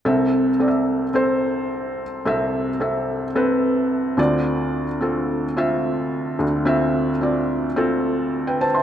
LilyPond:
<<
  \new Staff \with { instrumentName = "Felt piano" } { \time 4/4 \key c \major \tempo 4 = 109 << { r1 | r1 | r1 | r2. r16 <b' g''>16 <c'' a''>16 <e'' c'''>16 | } \\ { <c' a' e''>4 <c' a' d'' e''>4 <c' a' c''>4. r8 | <c' a' e''>4 <c' a' e''>4 <c' a' b'>4. <c' f' d''>8~ | <c' f' d''>8 r8 <c' f' a'>4 <c' f' e''>4. r8 | <c' f' e''>4 <c' f' d''>4 <c' f' a'>4. r8 | } >> }
  \new Staff \with { instrumentName = "Felt piano" } { \clef bass \time 4/4 \key c \major <c, c>1 | <c, c>2.~ <c, c>8 <d, d>8~ | <d, d>2.~ <d, d>8 <d, d>8~ | <d, d>2.~ <d, d>8 r8 | }
>>